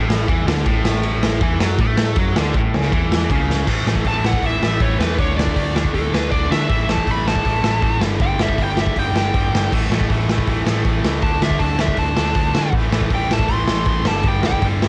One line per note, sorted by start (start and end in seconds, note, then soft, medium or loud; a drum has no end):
0.00 0.25 A1 loud
0.00 0.27 A2 loud
0.10 snare loud
0.28 0.44 E2 loud
0.28 0.46 E3 loud
0.28 kick loud
0.28 ride medium
0.45 0.63 D2 loud
0.45 0.65 D3 loud
0.45 snare loud
0.66 1.37 A1 medium
0.66 1.40 A2 loud
0.66 kick loud
0.66 ride medium
0.85 snare loud
1.03 ride medium
1.23 snare loud
1.41 1.58 E2 loud
1.41 1.59 E3 loud
1.41 kick loud
1.41 ride medium
1.59 1.77 F#2 loud
1.59 1.78 F#3 loud
1.59 snare loud
1.78 2.13 A2 loud
1.78 2.16 A3 loud
1.78 kick loud
1.78 ride medium
1.97 snare loud
2.16 2.34 F#2 medium
2.16 2.35 F#3 loud
2.16 kick loud
2.16 ride medium
2.36 2.53 D2 loud
2.36 2.54 D3 loud
2.36 snare loud
2.54 2.71 A1 loud
2.54 2.73 A2 loud
2.54 kick loud
2.54 ride medium
2.74 2.91 C#2 medium
2.74 2.92 C#3 loud
2.74 snare loud
2.91 3.26 E2 loud
2.91 3.29 E3 loud
2.91 kick loud
2.91 ride medium
3.12 snare loud
3.29 3.68 C#2 loud
3.29 3.67 C#3 loud
3.29 kick loud
3.29 ride medium
3.50 snare medium
3.67 3.83 A1 medium
3.67 3.85 A2 medium
3.67 3.86 E3 loud
3.67 3.87 A3 loud
3.67 kick loud
3.67 crash loud
3.85 4.01 A1 medium
3.85 4.04 A2 medium
3.85 4.04 E3 medium
3.85 4.06 A3 medium
3.85 snare loud
3.95 kick medium
4.04 4.35 A1 medium
4.04 4.23 A2 medium
4.04 4.24 E3 medium
4.04 4.25 A3 loud
4.04 4.26 A5 loud
4.04 kick medium
4.04 open hi-hat medium
4.24 4.42 A2 medium
4.24 4.42 E3 medium
4.24 4.44 A3 medium
4.24 4.46 F#5 medium
4.24 snare loud
4.33 kick medium
4.42 4.58 A1 medium
4.42 4.60 A2 medium
4.42 4.61 E3 loud
4.42 4.62 A3 loud
4.42 4.81 E5 loud
4.42 kick loud
4.42 open hi-hat medium
4.61 4.77 A1 medium
4.61 4.79 A2 medium
4.61 4.80 E3 medium
4.61 4.81 A3 medium
4.61 snare loud
4.81 4.96 A1 medium
4.81 4.98 A2 medium
4.81 4.99 E3 medium
4.81 5.00 A3 medium
4.81 4.99 C#5 medium
4.81 kick loud
4.81 open hi-hat medium
4.99 5.19 E2 medium
4.99 5.17 A2 medium
4.99 5.17 E3 medium
4.99 5.18 A3 loud
4.99 5.20 B4 medium
4.99 snare loud
5.18 5.34 D2 medium
5.18 5.36 D3 loud
5.18 5.38 A3 medium
5.18 5.37 D4 loud
5.18 5.37 C#5 medium
5.18 kick loud
5.18 open hi-hat medium
5.37 5.53 D2 medium
5.37 5.55 D3 medium
5.37 5.56 A3 medium
5.37 5.56 D4 loud
5.37 5.74 D5 medium
5.37 snare loud
5.47 kick medium
5.56 5.87 D2 medium
5.56 5.73 D3 medium
5.56 5.74 A3 medium
5.56 5.75 D4 medium
5.56 kick loud
5.56 open hi-hat medium
5.75 5.92 D3 medium
5.75 5.93 A3 medium
5.75 5.93 D4 medium
5.75 snare loud
5.85 kick medium
5.93 6.09 D2 medium
5.93 6.11 D3 loud
5.93 6.11 A3 loud
5.93 6.11 D4 loud
5.93 6.12 A4 medium
5.93 kick loud
5.93 open hi-hat medium
6.12 6.28 D2 medium
6.12 6.30 D3 medium
6.12 6.30 A3 medium
6.12 6.31 D4 loud
6.12 6.31 B4 medium
6.12 snare loud
6.31 6.47 D2 medium
6.31 6.48 D3 medium
6.31 6.48 A3 medium
6.31 6.49 D4 medium
6.31 6.51 D5 medium
6.31 kick loud
6.31 open hi-hat medium
6.49 6.67 D3 medium
6.49 6.66 D3 medium
6.49 6.67 A3 medium
6.49 6.68 D4 loud
6.49 6.87 E5 medium
6.49 snare loud
6.68 6.85 A1 medium
6.68 6.87 A2 loud
6.68 6.87 E3 loud
6.68 6.88 A3 loud
6.68 kick loud
6.68 open hi-hat medium
6.88 7.03 A1 medium
6.88 7.04 A2 medium
6.88 7.04 E3 medium
6.88 7.05 A3 loud
6.88 7.11 A5 medium
6.88 snare loud
6.98 kick medium
7.05 7.38 A1 medium
7.05 7.24 A2 medium
7.05 7.24 E3 medium
7.05 7.25 A3 medium
7.05 kick loud
7.05 open hi-hat medium
7.11 7.27 B5 medium
7.25 7.45 A2 medium
7.25 7.45 E3 medium
7.25 7.45 A3 medium
7.25 8.00 A5 loud
7.25 snare loud
7.36 kick loud
7.45 7.60 A1 medium
7.45 7.62 A2 loud
7.45 7.63 E3 loud
7.45 7.63 A3 loud
7.45 kick medium
7.45 open hi-hat medium
7.63 7.79 A1 medium
7.63 7.81 A2 medium
7.63 7.81 E3 medium
7.63 7.81 A3 medium
7.63 snare loud
7.82 7.98 A1 medium
7.82 8.00 A2 medium
7.82 8.00 E3 medium
7.82 8.00 A3 medium
7.82 kick loud
7.82 open hi-hat medium
8.00 8.16 G1 medium
8.00 8.20 G2 medium
8.00 8.20 D3 loud
8.00 8.21 G3 loud
8.00 snare loud
8.20 8.36 G1 medium
8.20 8.39 G2 loud
8.20 8.39 D3 loud
8.20 8.40 G3 loud
8.20 8.39 G5 loud
8.20 kick loud
8.20 open hi-hat medium
8.38 8.54 G1 medium
8.38 8.57 G2 medium
8.38 8.57 D3 medium
8.38 8.58 G3 loud
8.38 snare loud
8.43 8.59 E5 medium
8.49 kick medium
8.58 8.89 G1 medium
8.58 8.76 G2 medium
8.58 8.76 D3 medium
8.58 8.76 G3 medium
8.58 kick loud
8.58 open hi-hat medium
8.63 8.79 G5 medium
8.77 8.96 G2 medium
8.77 8.96 D3 medium
8.77 8.97 G3 medium
8.77 8.99 E5 medium
8.77 snare loud
8.87 kick medium
8.96 9.11 G1 medium
8.96 9.14 G2 medium
8.96 9.14 D3 loud
8.96 9.14 G3 loud
8.96 9.71 G5 loud
8.96 kick loud
8.96 open hi-hat medium
9.13 9.29 G1 medium
9.13 9.33 G2 medium
9.13 9.34 D3 medium
9.13 9.34 G3 medium
9.13 snare loud
9.34 9.50 G1 medium
9.34 9.52 G2 medium
9.34 9.52 D3 medium
9.34 9.53 G3 medium
9.34 kick loud
9.34 open hi-hat medium
9.53 9.69 G1 medium
9.53 9.71 G2 medium
9.53 9.70 D3 loud
9.53 9.71 G3 loud
9.53 snare loud
9.72 9.87 A1 medium
9.72 9.90 A2 medium
9.72 9.90 E3 medium
9.72 9.92 A3 loud
9.72 kick loud
9.72 crash loud
9.90 10.05 A1 medium
9.90 10.09 A2 medium
9.90 10.10 E3 medium
9.90 10.11 A3 medium
9.90 snare loud
10.01 kick medium
10.10 10.41 A1 medium
10.10 10.29 A2 medium
10.10 10.29 E3 medium
10.10 10.31 A3 loud
10.10 kick loud
10.10 open hi-hat medium
10.29 10.48 A2 medium
10.29 10.48 E3 medium
10.29 10.49 A3 medium
10.29 snare loud
10.38 kick medium
10.47 10.63 A1 medium
10.47 10.67 A2 medium
10.47 10.68 E3 medium
10.47 10.70 A3 loud
10.47 kick medium
10.47 open hi-hat medium
10.66 10.82 A1 medium
10.66 10.86 A2 medium
10.66 10.87 E3 medium
10.66 10.88 A3 loud
10.66 snare loud
10.85 11.00 A1 medium
10.85 11.04 A2 medium
10.85 11.04 E3 medium
10.85 kick loud
10.85 open hi-hat medium
10.89 11.06 A3 medium
11.03 11.19 C#2 medium
11.03 11.22 A2 medium
11.03 11.22 E3 medium
11.03 11.25 A3 medium
11.03 snare loud
11.22 11.38 D2 medium
11.22 11.41 D3 loud
11.22 11.42 A3 loud
11.22 11.42 D4 loud
11.22 11.41 A5 loud
11.22 kick loud
11.22 open hi-hat medium
11.41 11.57 D2 medium
11.41 11.60 D3 medium
11.41 11.61 A3 loud
11.41 11.61 D4 loud
11.41 11.60 E5 medium
11.41 snare loud
11.51 kick medium
11.59 11.91 D2 medium
11.59 11.79 D3 medium
11.59 11.80 A3 medium
11.59 11.80 D4 loud
11.59 11.78 A5 medium
11.59 kick loud
11.59 open hi-hat medium
11.79 11.97 D3 medium
11.79 11.97 A3 medium
11.79 11.98 D4 medium
11.79 11.98 E5 medium
11.79 snare loud
11.88 kick medium
11.97 12.13 D2 medium
11.97 12.16 D3 loud
11.97 12.17 A3 loud
11.97 12.16 D4 loud
11.97 12.72 A5 loud
11.97 kick loud
11.97 open hi-hat medium
12.16 12.32 D2 loud
12.16 12.35 D3 medium
12.16 12.35 A3 medium
12.16 12.36 D4 medium
12.16 snare loud
12.34 12.51 D2 medium
12.34 12.54 D3 medium
12.34 12.55 A3 medium
12.34 12.55 D4 medium
12.34 kick loud
12.34 open hi-hat medium
12.54 12.70 D3 medium
12.54 12.73 D3 loud
12.54 12.73 A3 loud
12.54 12.73 D4 loud
12.54 snare loud
12.72 12.89 A1 medium
12.72 12.92 A2 loud
12.72 12.93 E3 loud
12.72 12.93 A3 loud
12.72 kick loud
12.72 open hi-hat medium
12.91 13.07 A1 medium
12.91 13.11 A2 medium
12.91 13.11 E3 medium
12.91 13.12 A3 medium
12.91 snare loud
13.01 kick medium
13.10 13.42 A1 medium
13.10 13.30 A2 medium
13.10 13.31 E3 medium
13.10 13.31 A3 loud
13.10 kick loud
13.10 open hi-hat medium
13.15 13.32 G5 medium
13.31 13.49 A2 medium
13.31 13.49 E3 medium
13.31 13.50 A3 loud
13.31 13.53 A5 medium
13.31 snare loud
13.39 kick medium
13.49 13.64 A1 medium
13.49 13.68 A2 loud
13.49 13.69 E3 loud
13.49 13.69 A3 loud
13.49 kick medium
13.49 open hi-hat medium
13.53 14.06 C6 loud
13.66 13.82 A1 medium
13.66 13.87 A2 medium
13.66 snare loud
13.70 13.88 E3 medium
13.70 13.88 A3 medium
13.85 14.02 A1 medium
13.85 14.06 A2 medium
13.85 kick loud
13.85 open hi-hat medium
13.90 14.06 E3 medium
13.90 14.06 A3 medium
14.05 14.21 G1 medium
14.05 14.25 G2 medium
14.05 14.26 D3 loud
14.05 14.26 G3 loud
14.05 14.25 A5 medium
14.05 snare loud
14.23 14.40 G1 medium
14.23 14.44 G2 loud
14.23 14.44 D3 loud
14.23 14.45 G3 loud
14.23 kick loud
14.23 open hi-hat medium
14.28 14.45 G5 loud
14.43 14.60 G1 medium
14.43 14.62 G2 medium
14.43 14.62 D3 medium
14.43 14.62 G3 medium
14.43 14.64 G5 loud
14.43 snare loud
14.53 kick medium
14.62 14.88 G1 medium
14.62 14.81 G2 medium
14.62 14.81 D3 medium
14.62 14.82 G3 loud
14.62 kick loud
14.62 open hi-hat medium
14.82 14.88 G2 medium
14.82 14.88 D3 medium
14.82 14.88 G3 medium
14.82 snare loud